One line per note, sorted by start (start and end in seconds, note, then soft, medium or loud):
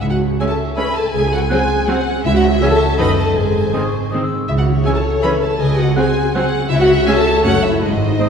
0.00 0.33 C#2 medium
0.00 1.12 C#3 medium
0.00 0.05 E4 medium
0.00 0.06 E5 medium
0.10 0.75 G#3 soft
0.10 0.23 F#4 medium
0.10 0.19 F#5 medium
0.21 0.66 C#5 medium
0.30 0.57 G#4 medium
0.37 0.48 G#3 soft
0.37 0.47 G#4 medium
0.37 0.53 C#5 soft
0.37 0.73 E5 medium
0.37 1.15 E5 medium
0.37 0.54 E5 soft
0.37 0.45 G#5 soft
0.37 0.44 G#5 medium
0.41 0.49 C#4 soft
0.47 0.60 A4 medium
0.47 0.57 A5 medium
0.47 1.15 C#6 medium
0.58 1.40 G#4 soft
0.68 1.15 C#5 soft
0.76 0.94 G#3 medium
0.76 0.86 G#3 soft
0.76 0.87 C#4 medium
0.76 0.85 B4 medium
0.76 0.90 C#5 medium
0.76 0.90 E5 soft
0.76 0.83 G#5 soft
0.76 1.86 G#5 medium
0.76 0.95 B5 medium
0.86 1.04 C#4 soft
0.95 1.22 G#3 medium
0.95 1.05 A4 medium
0.95 1.14 A5 medium
1.05 1.16 C#4 soft
1.13 1.45 C#2 medium
1.13 2.23 C#3 medium
1.13 1.32 G#4 loud
1.13 1.32 G#5 medium
1.23 1.86 G#3 medium
1.32 1.40 F#4 medium
1.32 1.78 C5 medium
1.32 1.40 F#5 medium
1.41 1.69 G#4 medium
1.50 1.60 F#3 medium
1.50 1.59 C4 medium
1.50 2.05 G#4 loud
1.50 1.65 C5 medium
1.50 1.64 F#5 medium
1.50 2.26 F#5 medium
1.50 1.58 G#5 medium
1.50 2.06 G#5 medium
1.61 2.27 C6 medium
1.70 2.52 G#4 medium
1.79 2.27 C5 medium
1.88 1.96 F#3 medium
1.88 2.05 G#3 medium
1.88 1.97 C4 medium
1.88 2.02 C5 medium
1.88 2.01 F#5 medium
1.88 2.25 F#5 medium
1.88 1.96 G#5 medium
1.97 2.14 C#4 medium
2.06 2.34 G#3 medium
2.15 3.00 C#4 medium
2.24 2.55 C#2 loud
2.24 2.56 C#2 medium
2.24 3.00 C#3 medium
2.24 2.30 E4 loud
2.24 2.97 E5 loud
2.24 2.34 E5 loud
2.35 3.01 G#3 medium
2.35 2.47 F#4 loud
2.35 2.44 F#5 medium
2.44 2.88 C#5 medium
2.53 2.80 G#4 medium
2.61 2.70 E3 medium
2.61 2.70 C#4 medium
2.61 2.71 G#4 loud
2.61 2.76 C#5 medium
2.61 2.75 E5 medium
2.61 3.01 E5 medium
2.61 2.68 G#5 medium
2.61 2.67 G#5 medium
2.69 2.82 A4 loud
2.69 2.99 A5 medium
2.69 3.01 C#6 medium
2.81 3.01 G#4 medium
2.90 3.00 C#5 medium
2.98 3.30 F#1 medium
2.98 3.37 F#2 medium
2.98 3.30 F#2 medium
2.98 3.07 D#3 medium
2.98 3.06 D#4 soft
2.98 3.08 B4 medium
2.98 3.12 D#5 medium
2.98 3.36 D#5 medium
2.98 3.13 D#5 medium
2.98 3.05 F#5 medium
2.98 3.17 B5 loud
3.08 3.38 A3 soft
3.18 3.36 A4 medium
3.18 3.54 D#5 medium
3.18 3.36 A5 medium
3.28 3.38 A4 soft
3.36 3.67 G#1 medium
3.36 3.67 G#2 medium
3.36 4.50 G#2 medium
3.36 4.12 G#4 medium
3.36 4.29 C5 medium
3.36 4.11 G#5 medium
3.46 4.11 C4 soft
3.55 3.73 D#5 soft
3.66 3.92 C5 medium
3.74 3.82 D#3 soft
3.74 3.82 C4 soft
3.74 3.88 C5 soft
3.74 3.87 D#5 soft
3.74 4.01 D#5 soft
3.74 3.87 C6 medium
3.85 4.14 C#6 medium
3.85 4.51 D#6 soft
3.93 4.50 C5 soft
4.03 4.50 D#5 soft
4.10 4.21 D#3 soft
4.10 4.29 C4 soft
4.10 4.21 C4 soft
4.10 4.25 C5 soft
4.10 4.24 D#5 soft
4.10 4.21 D#6 medium
4.22 4.39 D#3 soft
4.22 4.49 E6 medium
4.30 4.50 C4 soft
4.40 4.50 D#3 soft
4.48 4.79 C#2 medium
4.48 4.79 C#3 medium
4.48 5.60 C#3 medium
4.48 4.52 E4 medium
4.48 5.56 C#5 medium
4.48 4.52 E5 medium
4.57 5.22 G#3 medium
4.57 4.71 F#4 medium
4.57 4.65 F#5 medium
4.67 5.13 C#5 medium
4.76 5.03 G#4 medium
4.84 4.95 E3 soft
4.84 4.96 C#4 soft
4.84 4.89 G#4 medium
4.84 4.99 C#5 medium
4.84 4.99 E5 medium
4.84 5.62 E5 soft
4.84 4.92 G#5 medium
4.84 4.89 G#5 medium
4.94 5.22 A4 medium
4.94 5.02 A5 medium
4.94 5.62 C#6 medium
5.05 5.87 G#4 medium
5.14 5.62 C#5 medium
5.22 5.32 E3 soft
5.22 5.41 G#3 medium
5.22 5.33 C#4 medium
5.22 5.42 B4 medium
5.22 5.37 C#5 medium
5.22 5.36 E5 medium
5.22 5.30 G#5 soft
5.22 5.30 B5 medium
5.32 5.50 C#4 soft
5.41 5.69 G#3 medium
5.41 5.60 A4 medium
5.41 5.60 A5 medium
5.51 5.62 C#4 soft
5.57 5.90 C#2 medium
5.57 6.68 C#3 medium
5.57 5.91 C#3 medium
5.57 5.77 G#4 loud
5.57 5.96 D#5 medium
5.57 5.79 G#5 medium
5.70 6.34 G#3 medium
5.77 5.96 F#4 medium
5.77 6.24 C5 medium
5.77 5.97 F#5 medium
5.88 6.14 G#4 medium
5.95 6.05 F#3 medium
5.95 6.05 C4 medium
5.95 6.50 G#4 loud
5.95 6.11 C5 medium
5.95 6.10 F#5 medium
5.95 6.73 F#5 medium
5.95 6.51 G#5 medium
5.95 6.33 G#5 medium
5.95 6.05 G#5 medium
6.06 6.73 C6 medium
6.16 6.97 G#4 medium
6.25 6.73 C5 medium
6.33 6.43 F#3 medium
6.33 6.51 G#3 medium
6.33 6.42 C4 medium
6.33 6.48 C5 medium
6.33 6.70 F#5 medium
6.33 6.48 F#5 medium
6.33 6.42 G#5 medium
6.44 6.60 C#4 medium
6.52 6.78 G#3 medium
6.61 7.84 C#4 medium
6.70 7.01 C#2 medium
6.70 7.46 C#3 medium
6.70 7.02 C#3 medium
6.70 6.75 E4 loud
6.70 6.79 E5 loud
6.70 7.44 E5 loud
6.79 7.46 G#3 medium
6.79 6.92 F#4 loud
6.79 7.08 F#5 medium
6.88 7.33 C#5 medium
6.99 7.24 G#4 medium
7.06 7.15 G#3 medium
7.06 7.14 C#4 medium
7.06 7.16 G#4 loud
7.06 7.21 C#5 medium
7.06 7.46 E5 medium
7.06 7.22 E5 medium
7.06 7.11 G#5 loud
7.06 7.15 G#5 medium
7.16 7.44 A4 loud
7.16 7.45 A5 medium
7.16 7.84 C#6 medium
7.25 7.46 G#4 medium
7.34 7.61 C#5 medium
7.43 7.76 F#1 medium
7.43 7.84 F#2 medium
7.43 7.76 F#2 medium
7.43 7.52 A3 medium
7.43 7.52 C#4 medium
7.43 7.64 F#4 loud
7.43 7.57 C#5 medium
7.43 7.58 C#5 medium
7.43 7.82 C#5 medium
7.43 7.64 F#5 loud
7.43 7.52 A5 medium
7.53 7.84 A3 medium
7.62 7.82 E4 loud
7.62 7.83 C#5 medium
7.62 7.83 E5 medium
7.72 7.84 A4 medium
7.82 8.14 G#1 medium
7.82 8.29 G#2 medium
7.82 8.15 G#2 medium
7.82 8.29 D#4 medium
7.82 8.29 C5 medium
7.82 8.29 D#5 medium
7.92 8.29 G#3 soft
8.01 8.29 G#4 medium
8.10 8.29 C4 medium
8.19 8.28 G#3 soft
8.19 8.28 C4 soft
8.19 8.29 C5 medium
8.19 8.29 D#5 medium
8.19 8.28 C6 medium